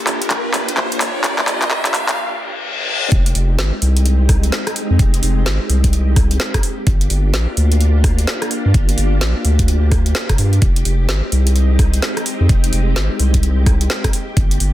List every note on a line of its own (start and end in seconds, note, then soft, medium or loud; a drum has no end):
0.00 3.08 A#3 medium
0.00 3.08 D4 medium
0.00 3.08 F4 medium
0.00 3.08 G4 medium
0.00 riser medium
0.07 clap medium
0.07 open hi-hat loud
0.22 closed hi-hat medium
0.30 kick medium
0.30 clap medium
0.30 closed hi-hat medium
0.54 clap medium
0.54 open hi-hat loud
0.69 closed hi-hat medium
0.77 kick loud
0.77 clap medium
0.92 closed hi-hat soft
1.01 clap medium
1.01 open hi-hat loud
1.24 kick loud
1.24 clap medium
1.24 closed hi-hat medium
1.39 clap medium
1.48 clap medium
1.48 open hi-hat loud
1.62 clap medium
1.62 closed hi-hat soft
1.71 kick loud
1.71 clap loud
1.85 clap medium
1.85 closed hi-hat medium
1.94 clap loud
1.94 open hi-hat loud
2.09 clap medium
2.09 closed hi-hat medium
2.18 reverse cymbal medium
3.12 3.33 F1 loud
3.12 6.60 G#3 medium
3.12 6.60 C4 medium
3.12 6.60 D#4 medium
3.12 14.73 G4 medium
3.12 kick loud
3.12 closed hi-hat medium
3.26 closed hi-hat medium
3.35 3.60 F1 loud
3.35 open hi-hat loud
3.58 3.72 G#1 medium
3.58 snare loud
3.82 4.51 C2 medium
3.82 open hi-hat loud
3.97 closed hi-hat medium
4.06 closed hi-hat medium
4.29 kick loud
4.29 cross-stick medium
4.29 open hi-hat loud
4.43 closed hi-hat medium
4.52 snare loud
4.67 cross-stick medium
4.67 closed hi-hat medium
4.76 open hi-hat loud
4.90 4.98 F2 loud
4.99 5.21 F1 medium
4.99 kick loud
4.99 closed hi-hat medium
5.14 closed hi-hat medium
5.23 5.48 F1 loud
5.23 open hi-hat loud
5.46 5.59 G#1 medium
5.46 snare loud
5.69 6.38 C2 medium
5.69 open hi-hat loud
5.84 kick medium
5.84 closed hi-hat medium
5.93 closed hi-hat medium
6.16 kick loud
6.16 cross-stick medium
6.16 open hi-hat loud
6.31 closed hi-hat medium
6.40 snare loud
6.54 kick medium
6.54 cross-stick medium
6.54 closed hi-hat soft
6.63 10.58 A#3 medium
6.63 10.58 D4 medium
6.63 10.58 F4 medium
6.63 open hi-hat loud
6.87 7.08 G1 loud
6.87 kick loud
6.87 closed hi-hat medium
7.01 closed hi-hat medium
7.10 7.35 G1 medium
7.10 open hi-hat loud
7.34 7.47 A#1 medium
7.34 snare loud
7.57 8.26 D2 medium
7.57 open hi-hat loud
7.72 closed hi-hat medium
7.81 closed hi-hat medium
8.04 kick loud
8.04 cross-stick medium
8.04 open hi-hat loud
8.19 closed hi-hat medium
8.27 snare loud
8.42 cross-stick medium
8.42 closed hi-hat soft
8.51 open hi-hat loud
8.65 8.73 G2 loud
8.74 8.96 G1 medium
8.74 kick loud
8.74 closed hi-hat medium
8.89 closed hi-hat medium
8.98 9.23 G1 medium
8.98 open hi-hat loud
9.21 9.34 A#1 medium
9.21 snare loud
9.45 10.14 D2 medium
9.45 open hi-hat loud
9.59 kick medium
9.59 closed hi-hat medium
9.68 closed hi-hat medium
9.92 kick loud
9.92 cross-stick medium
9.92 open hi-hat loud
10.06 closed hi-hat medium
10.15 snare loud
10.29 10.37 F1 medium
10.29 kick medium
10.29 cross-stick medium
10.29 closed hi-hat soft
10.38 10.60 G2 medium
10.38 open hi-hat loud
10.53 closed hi-hat soft
10.62 10.83 F1 loud
10.62 14.10 G#3 medium
10.62 14.10 C4 medium
10.62 14.10 D#4 medium
10.62 kick loud
10.62 closed hi-hat medium
10.76 closed hi-hat medium
10.85 11.10 F1 loud
10.85 open hi-hat loud
11.09 11.22 G#1 medium
11.09 snare loud
11.32 12.01 C2 loud
11.32 open hi-hat loud
11.47 closed hi-hat medium
11.56 closed hi-hat medium
11.79 kick loud
11.79 cross-stick soft
11.79 open hi-hat loud
11.94 closed hi-hat medium
12.02 snare loud
12.17 cross-stick medium
12.17 closed hi-hat soft
12.26 open hi-hat loud
12.40 12.48 F2 loud
12.49 12.71 F1 loud
12.49 kick loud
12.49 closed hi-hat medium
12.64 closed hi-hat medium
12.73 12.98 F1 medium
12.73 open hi-hat loud
12.96 13.09 G#1 medium
12.96 snare loud
13.20 13.88 C2 medium
13.20 open hi-hat loud
13.34 kick medium
13.34 closed hi-hat medium
13.43 closed hi-hat medium
13.66 kick loud
13.66 cross-stick soft
13.66 open hi-hat loud
13.81 closed hi-hat medium
13.90 snare loud
14.04 kick medium
14.04 cross-stick medium
14.04 closed hi-hat medium
14.13 14.73 A#3 medium
14.13 14.73 D4 medium
14.13 14.73 F4 medium
14.13 open hi-hat loud
14.37 14.58 G1 loud
14.37 kick loud
14.37 closed hi-hat medium
14.51 closed hi-hat medium
14.60 14.73 G1 loud
14.60 open hi-hat loud